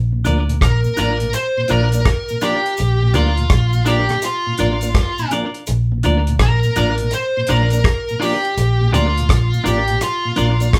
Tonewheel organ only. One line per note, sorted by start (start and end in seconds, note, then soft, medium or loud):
0.12 0.19 A#2 medium
0.25 0.38 F3 medium
0.25 0.38 A#3 medium
0.25 0.38 D4 medium
0.47 0.55 A#2 soft
0.84 0.91 A#2 medium
0.96 1.09 F3 medium
0.96 1.10 A#3 medium
0.96 1.10 D4 medium
1.21 1.28 A#2 medium
1.57 1.64 A#2 medium
1.68 1.82 F3 medium
1.68 1.82 A#3 medium
1.68 1.82 D4 medium
1.93 2.00 A#3 medium
1.93 2.01 D4 medium
2.30 2.37 A#2 medium
2.42 2.54 F3 medium
2.42 2.55 A#3 medium
2.42 2.55 D4 medium
3.03 3.09 A#2 medium
3.15 3.27 F3 medium
3.15 3.27 A#3 medium
3.15 3.27 D4 medium
3.38 3.45 A#2 medium
3.74 3.81 A#2 medium
3.87 3.99 F3 medium
3.87 3.99 A#3 medium
3.87 3.99 D4 medium
4.09 4.16 A#2 medium
4.46 4.53 A#2 medium
4.59 4.72 F3 medium
4.59 4.71 A#3 medium
4.59 4.72 D4 medium
4.82 4.89 A#3 medium
4.82 4.89 D4 medium
5.19 5.25 A#2 medium
5.32 5.44 F3 medium
5.32 5.45 A#3 medium
5.32 5.45 D4 medium
5.92 5.98 A#2 medium
6.05 6.17 F3 medium
6.05 6.17 A#3 medium
6.05 6.17 D4 medium
6.28 6.34 A#2 medium
6.65 6.71 A#2 medium
6.78 6.89 F3 medium
6.78 6.89 A#3 medium
6.78 6.90 D4 medium
7.01 7.07 A#2 medium
7.37 7.43 A#2 medium
7.50 7.62 F3 medium
7.50 7.62 A#3 medium
7.50 7.62 D4 medium
7.73 7.79 A#3 medium
7.73 7.79 D4 medium
8.10 8.16 A#2 medium
8.23 8.34 F3 medium
8.23 8.34 A#3 medium
8.23 8.34 D4 medium
8.81 8.87 A#2 medium
8.94 9.06 F3 medium
8.94 9.06 A#3 medium
8.94 9.06 D4 medium
9.19 9.24 A#2 medium
9.54 9.60 A#2 medium
9.66 9.78 F3 medium
9.66 9.78 A#3 medium
9.66 9.79 D4 medium
9.90 9.96 A#2 medium
10.25 10.32 A#2 medium
10.36 10.49 F3 medium
10.36 10.49 A#3 medium
10.36 10.49 D4 medium
10.61 10.67 A#3 medium
10.61 10.68 D4 medium